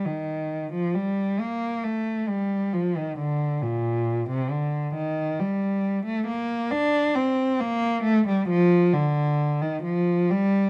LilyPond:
\new Staff \with { instrumentName = "Cello" } { \clef bass \time 3/4 \key g \minor \tempo 4 = 67 ees8. f16 g8 bes8 a8 g8 | f16 ees16 d8 bes,8. c16 d8 ees8 | \key bes \major g8. a16 bes8 d'8 c'8 bes8 | a16 g16 f8 d8. ees16 f8 g8 | }